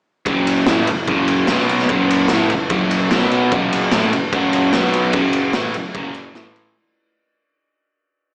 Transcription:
0.26 0.65 F#1 loud
0.26 0.67 F#2 loud
0.26 0.67 C#3 loud
0.26 0.68 F#3 loud
0.26 kick loud
0.26 ride loud
0.47 ride medium
0.66 0.86 A1 loud
0.66 0.88 A2 medium
0.66 0.88 E3 loud
0.66 0.89 A3 loud
0.66 snare loud
0.66 ride loud
0.87 1.07 F#1 medium
0.87 1.05 F#2 medium
0.87 1.05 C#3 medium
0.87 ride medium
1.07 1.46 F#1 loud
1.07 1.49 F#2 medium
1.07 1.49 C#3 loud
1.07 1.49 F#3 loud
1.07 kick loud
1.07 ride loud
1.28 ride medium
1.47 1.87 B1 loud
1.47 1.90 B2 medium
1.47 1.90 F#3 medium
1.47 snare loud
1.47 ride loud
1.51 1.91 B3 loud
1.59 snare soft
1.69 ride medium
1.79 snare soft
1.89 2.28 F#1 loud
1.89 2.30 F#2 loud
1.89 2.31 C#3 medium
1.89 2.31 F#3 loud
1.89 kick loud
1.89 ride medium
2.10 ride medium
2.28 2.50 A1 loud
2.28 2.50 A2 medium
2.28 snare loud
2.28 ride loud
2.33 2.52 E3 medium
2.33 2.52 A3 loud
2.50 2.70 F#1 medium
2.50 2.67 F#2 medium
2.50 2.67 C#3 medium
2.50 ride medium
2.70 3.09 F#1 loud
2.70 3.11 F#2 loud
2.70 3.10 C#3 loud
2.70 3.10 F#3 loud
2.70 kick loud
2.70 ride loud
2.91 ride medium
3.10 3.50 B1 medium
3.10 3.51 B2 medium
3.10 3.52 F#3 loud
3.10 3.52 B3 loud
3.10 snare medium
3.10 ride medium
3.21 snare soft
3.31 ride medium
3.51 3.90 F#1 loud
3.51 3.92 F#2 medium
3.51 3.91 C#3 medium
3.51 3.91 F#3 loud
3.51 kick loud
3.51 ride loud
3.72 ride medium
3.91 4.11 A1 loud
3.91 4.12 A2 medium
3.91 4.12 E3 loud
3.91 4.13 A3 loud
3.91 snare loud
3.91 ride loud
4.12 4.31 F#1 medium
4.12 4.30 F#2 medium
4.12 4.30 C#3 medium
4.12 ride medium
4.32 4.71 F#1 loud
4.32 4.73 F#2 loud
4.32 4.73 C#3 loud
4.32 4.73 F#3 loud
4.32 kick loud
4.32 ride loud
4.53 ride medium
4.73 5.11 B1 loud
4.73 5.13 B2 medium
4.73 5.14 F#3 medium
4.73 5.14 B3 loud
4.73 snare loud
4.73 ride loud
4.93 ride medium
5.13 5.51 F#1 loud
5.13 5.53 F#2 medium
5.13 5.54 C#3 loud
5.13 5.54 F#3 medium
5.13 kick loud
5.13 ride loud
5.33 ride medium
5.53 5.74 A1 loud
5.53 5.74 A2 medium
5.53 5.74 E3 loud
5.53 5.74 A3 medium
5.53 snare loud
5.53 ride loud
5.74 5.93 F#1 medium
5.74 5.91 F#2 medium
5.74 5.91 C#3 medium
5.74 ride medium
5.95 6.32 F#1 medium
5.95 6.35 F#2 medium
5.95 6.33 C#3 medium
5.95 6.35 F#3 loud
5.95 kick loud
5.95 ride medium
6.14 ride medium
6.34 6.71 A1 medium
6.34 6.73 A2 loud
6.34 6.74 E3 medium
6.34 6.75 A3 loud
6.34 snare loud
6.34 ride medium
6.56 ride medium

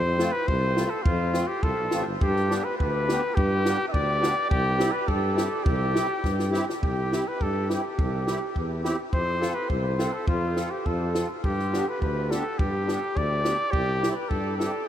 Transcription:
0.00 0.28 F2 loud
0.00 0.33 C5 loud
0.18 0.32 A3 medium
0.18 0.31 C4 medium
0.18 0.31 F4 medium
0.18 snare medium
0.32 0.49 B4 medium
0.47 0.86 C2 loud
0.47 0.92 C5 medium
0.47 kick medium
0.76 0.89 A3 medium
0.76 0.89 C4 medium
0.76 0.89 F4 medium
0.76 snare medium
0.90 1.04 A4 medium
1.03 1.43 F2 loud
1.03 1.49 F4 medium
1.03 kick medium
1.32 1.46 A3 medium
1.32 1.46 C4 medium
1.32 1.46 F4 medium
1.32 snare medium
1.47 1.64 G4 medium
1.63 1.76 C2 medium
1.63 2.06 A4 medium
1.63 kick medium
1.78 1.91 B1 medium
1.91 2.05 A1 medium
1.91 2.05 A3 medium
1.91 2.05 C4 medium
1.91 2.05 F4 medium
1.91 snare medium
2.06 2.20 G1 medium
2.21 2.60 G2 loud
2.21 2.66 G4 loud
2.21 kick medium
2.36 snare soft
2.49 2.63 B3 medium
2.49 2.63 D4 medium
2.49 2.63 G4 medium
2.49 snare medium
2.64 2.77 B4 medium
2.78 3.17 D2 medium
2.78 3.36 B4 medium
2.78 kick medium
3.08 3.21 B3 medium
3.08 3.21 D4 medium
3.08 3.21 G4 medium
3.08 snare medium
3.35 3.74 G2 loud
3.35 3.86 G4 loud
3.35 kick medium
3.64 3.78 B3 medium
3.64 3.78 D4 medium
3.64 3.78 G4 medium
3.64 snare medium
3.88 4.49 D5 loud
3.88 3.93 E5 medium
3.94 4.31 D2 medium
3.94 kick medium
4.21 4.34 B3 medium
4.21 4.34 D4 medium
4.21 4.34 G4 medium
4.21 snare medium
4.50 4.88 C2 loud
4.50 4.93 G4 loud
4.50 kick medium
4.77 4.91 C4 medium
4.77 4.91 E4 medium
4.77 4.91 G4 medium
4.77 snare medium
4.92 5.09 B4 medium
5.07 5.46 G2 medium
5.07 5.65 A4 medium
5.07 kick medium
5.34 5.48 C4 medium
5.34 5.49 E4 medium
5.34 5.49 G4 medium
5.34 snare medium
5.64 6.03 C2 loud
5.64 6.52 G4 medium
5.64 kick medium
5.94 6.07 C4 medium
5.94 6.07 E4 soft
5.94 6.07 G4 medium
5.94 snare medium
6.24 6.62 G2 medium
6.24 kick medium
6.24 snare soft
6.39 snare soft
6.51 6.65 C4 medium
6.51 6.65 E4 medium
6.51 6.65 G4 medium
6.51 snare medium
6.70 snare medium
6.83 7.21 C2 medium
6.83 7.29 G4 medium
6.83 kick medium
7.11 7.24 C4 medium
7.11 7.24 E4 medium
7.11 7.24 G4 medium
7.11 snare medium
7.28 7.44 B4 medium
7.41 7.78 G2 medium
7.41 7.70 A4 medium
7.41 kick medium
7.68 7.82 C4 medium
7.68 7.82 E4 soft
7.68 7.81 G4 medium
7.68 8.81 G4 medium
7.68 snare medium
7.99 8.36 C2 medium
7.99 kick medium
8.26 8.39 C4 medium
8.26 8.39 E4 medium
8.26 8.39 G4 medium
8.26 snare medium
8.56 8.93 E2 medium
8.56 kick soft
8.83 8.96 C4 medium
8.83 8.96 E4 medium
8.83 8.96 G4 medium
8.83 snare medium
9.13 9.50 F2 medium
9.13 9.55 C5 loud
9.13 kick medium
9.40 9.53 C4 medium
9.40 9.53 F4 medium
9.40 9.53 A4 medium
9.40 snare medium
9.54 9.71 B4 medium
9.69 10.08 C2 loud
9.69 10.14 C5 medium
9.69 kick medium
9.98 10.11 C4 medium
9.98 10.11 F4 medium
9.98 10.11 A4 medium
9.98 snare medium
10.13 10.27 A4 medium
10.27 10.66 F2 loud
10.27 10.72 F4 medium
10.27 kick medium
10.55 10.69 C4 medium
10.55 10.69 F4 medium
10.55 10.69 A4 medium
10.55 snare medium
10.70 10.87 G4 medium
10.86 11.24 F2 loud
10.86 11.30 A4 medium
10.86 kick medium
11.14 11.27 C4 medium
11.14 11.28 F4 soft
11.14 11.28 A4 medium
11.14 snare medium
11.44 11.82 G2 medium
11.44 11.90 G4 medium
11.44 kick medium
11.59 snare soft
11.72 11.85 B3 medium
11.72 11.86 D4 soft
11.72 11.85 G4 medium
11.72 snare medium
11.88 12.01 B4 medium
12.02 12.39 D2 medium
12.02 12.32 B4 medium
12.02 kick medium
12.30 12.44 B3 medium
12.30 12.44 D4 medium
12.30 12.44 G4 medium
12.30 12.60 A4 medium
12.30 snare medium
12.58 12.97 G2 medium
12.58 13.19 G4 medium
12.58 kick medium
12.86 13.00 B3 medium
12.86 13.00 D4 medium
12.86 13.00 G4 medium
12.86 snare medium
13.17 13.54 D2 medium
13.17 13.73 D5 medium
13.17 kick medium
13.43 13.57 B3 medium
13.43 13.57 D4 soft
13.43 13.57 G4 medium
13.43 snare medium
13.71 14.11 C2 medium
13.71 14.11 G4 loud
13.71 kick medium
14.00 14.14 C4 medium
14.00 14.14 E4 medium
14.00 14.14 G4 medium
14.00 snare medium
14.11 14.31 B4 medium
14.11 14.17 C5 medium
14.29 14.68 G2 medium
14.29 14.57 A4 medium
14.29 kick medium
14.58 14.72 C4 medium
14.58 14.72 E4 soft
14.58 14.72 G4 medium
14.58 14.88 A4 medium
14.58 snare medium

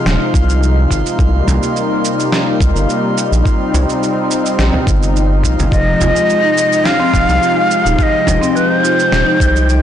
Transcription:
0.00 5.68 C3 medium
0.00 1.15 F3 medium
0.00 1.15 G#3 medium
0.00 9.82 D#4 medium
0.00 5.74 F4 medium
0.00 5.73 F5 medium
0.06 0.18 D#1 medium
0.06 snare medium
0.06 cabasa soft
0.34 0.87 C2 medium
0.34 kick loud
0.34 cabasa medium
0.50 cabasa soft
0.63 cabasa soft
0.91 1.03 G#1 medium
0.91 kick medium
0.91 cabasa medium
1.06 cabasa soft
1.19 1.42 C2 medium
1.19 5.68 G3 medium
1.19 3.43 A#3 medium
1.19 kick loud
1.19 cabasa soft
1.47 1.59 C2 medium
1.47 frame drum medium
1.47 cabasa medium
1.63 cabasa soft
1.76 cabasa soft
2.05 cabasa medium
2.20 cabasa soft
2.32 snare medium
2.32 cabasa soft
2.61 2.73 C2 medium
2.61 kick loud
2.61 cabasa medium
2.75 2.86 G1 loud
2.75 cabasa soft
2.90 cabasa soft
3.18 cabasa medium
3.32 3.43 A#1 medium
3.32 cabasa soft
3.45 5.70 C4 medium
3.45 kick loud
3.45 cabasa soft
3.74 3.86 C2 medium
3.74 frame drum medium
3.74 cabasa medium
3.89 cabasa soft
4.03 cabasa soft
4.31 cabasa medium
4.46 cabasa soft
4.59 4.71 A#1 medium
4.59 snare medium
4.59 cabasa soft
4.74 frame drum medium
4.87 5.45 G1 medium
4.87 kick loud
4.87 cabasa medium
5.03 cabasa soft
5.16 cabasa soft
5.44 5.56 A#1 medium
5.44 kick medium
5.44 cabasa medium
5.59 5.70 G1 medium
5.59 frame drum medium
5.59 cabasa soft
5.71 5.95 F1 loud
5.71 9.82 C3 medium
5.71 5.80 F3 medium
5.71 9.82 F3 medium
5.71 9.82 G#3 medium
5.71 9.82 G4 medium
5.71 6.87 D#5 loud
5.71 9.82 G5 medium
5.71 kick loud
5.71 cabasa soft
6.00 6.12 F1 medium
6.00 6.14 F4 medium
6.00 frame drum medium
6.00 cabasa medium
6.15 6.28 G#3 medium
6.15 cabasa soft
6.30 cabasa soft
6.43 6.56 D#4 medium
6.58 cabasa medium
6.72 cabasa soft
6.85 7.99 F5 loud
6.85 snare medium
6.85 cabasa soft
7.00 7.08 C4 loud
7.13 7.26 F1 medium
7.13 7.22 F3 medium
7.13 kick loud
7.13 cabasa medium
7.29 7.39 C2 loud
7.29 cabasa soft
7.42 7.56 F4 medium
7.42 cabasa soft
7.56 7.69 G#3 medium
7.71 cabasa medium
7.85 7.96 D#1 medium
7.85 7.98 D#4 medium
7.85 cabasa soft
7.99 8.04 F5 medium
7.99 kick loud
7.99 cabasa soft
8.03 8.57 D#5 loud
8.27 8.39 F1 medium
8.27 frame drum medium
8.27 cabasa medium
8.41 8.49 C4 loud
8.41 cabasa soft
8.55 8.64 F3 medium
8.55 8.71 B4 medium
8.55 cabasa soft
8.71 9.82 C5 medium
8.83 8.97 F4 medium
8.83 cabasa medium
8.98 9.11 G#3 medium
8.98 cabasa soft
9.12 9.24 D#1 medium
9.12 snare medium
9.12 cabasa soft
9.26 9.39 D#4 medium
9.40 9.82 C2 medium
9.40 kick loud
9.40 cabasa medium
9.56 cabasa soft
9.69 cabasa soft

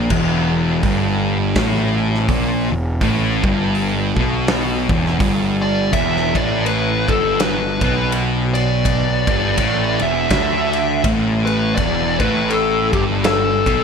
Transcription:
0.10 0.79 E1 medium
0.10 0.83 E2 loud
0.10 kick loud
0.10 crash medium
0.83 1.52 G1 loud
0.83 1.56 G2 loud
0.83 kick medium
0.83 open hi-hat soft
1.55 2.25 A1 medium
1.55 2.28 A2 loud
1.55 kick loud
1.55 snare loud
1.55 open hi-hat medium
2.14 snare soft
2.28 2.68 A#1 medium
2.28 2.70 A#2 loud
2.28 kick loud
2.28 open hi-hat medium
2.70 2.99 E1 medium
2.70 2.96 E2 medium
3.01 3.41 A1 loud
3.01 3.43 A2 loud
3.01 kick loud
3.01 open hi-hat medium
3.43 4.12 G1 loud
3.43 4.16 G2 loud
3.43 kick loud
3.75 open hi-hat medium
4.17 4.86 B1 medium
4.17 4.89 B2 loud
4.17 kick medium
4.48 snare loud
4.48 open hi-hat medium
4.89 5.18 E1 medium
4.89 5.19 E2 medium
4.89 kick loud
5.06 snare soft
5.20 5.89 G1 medium
5.20 5.92 G2 loud
5.20 kick loud
5.20 open hi-hat medium
5.62 5.91 D5 medium
5.93 6.32 E1 medium
5.93 6.34 E2 loud
5.93 6.32 E5 loud
5.93 kick medium
5.93 ride medium
6.16 snare soft
6.35 7.04 A1 medium
6.35 7.07 A2 loud
6.35 6.66 D5 loud
6.35 kick medium
6.35 ride medium
6.66 7.10 B4 medium
6.66 ride medium
7.08 7.78 G1 medium
7.08 7.80 G2 loud
7.08 7.37 A4 medium
7.08 kick loud
7.08 ride medium
7.40 8.09 B4 medium
7.40 snare loud
7.40 ride medium
7.81 9.23 B1 medium
7.81 9.26 B2 medium
7.81 kick loud
7.81 ride medium
8.12 ride medium
8.54 10.05 D5 medium
8.54 ride medium
8.85 kick medium
8.85 ride medium
9.27 9.56 G1 medium
9.27 9.57 G2 loud
9.27 kick loud
9.27 ride medium
9.58 9.97 A1 loud
9.58 9.99 A2 loud
9.58 kick medium
9.58 ride medium
9.99 10.29 E1 medium
9.99 10.31 E2 loud
9.99 11.01 E5 loud
9.99 ride medium
10.30 11.00 D2 medium
10.30 11.03 D3 loud
10.30 kick loud
10.30 snare loud
10.30 ride medium
10.73 ride medium
11.04 11.73 A1 medium
11.04 11.76 A2 loud
11.04 kick loud
11.04 ride loud
11.45 11.75 B4 medium
11.45 ride medium
11.75 12.17 E1 medium
11.75 12.18 E2 loud
11.75 12.19 D5 loud
11.75 kick medium
11.75 ride medium
12.19 12.89 A1 medium
12.19 12.91 A2 loud
12.19 12.51 B4 loud
12.19 kick loud
12.19 ride medium
12.49 12.89 A4 medium
12.49 ride medium
12.92 13.62 G1 medium
12.92 13.64 G2 loud
12.92 13.01 G4 medium
12.92 kick loud
12.92 ride medium
13.24 13.84 A4 medium
13.24 snare loud
13.24 ride medium
13.66 13.84 B1 medium
13.66 13.84 B2 medium
13.66 kick loud
13.66 ride medium

